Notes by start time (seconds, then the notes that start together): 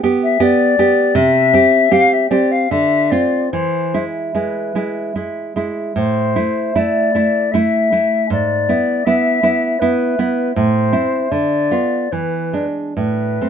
0.03 B3 G4
0.23 E5
0.40 B3 G4 D5
0.79 B3 G4
1.15 C3 E5
1.53 C4 G4
1.91 C4 G4 F5
2.13 E5
2.30 C4 G4 D5
2.51 F5
2.71 D3 E5
3.10 C4 F4 D5
3.51 E3 C5
3.94 G#3 E4
4.35 G#3 E4 B4
4.75 G#3 E4
5.16 G#3 E4
5.56 G#3 E4
5.96 A2 C5
6.36 A3 E4
6.75 A3 E4 D5
7.15 A3 E4
7.52 A3 E4 E5
7.92 A3 E4
8.30 G#2 D5
8.69 B3 E4
9.05 B3 E4 E5
9.43 B3 E4
9.79 B3 E4 B4
10.19 B3 E4
10.55 A2 C5
10.92 C4 E4
11.31 D3 D5
11.71 B3 F4
12.12 E3 B4
12.53 G#3 D4
12.96 A2 B4
13.41 A3 C4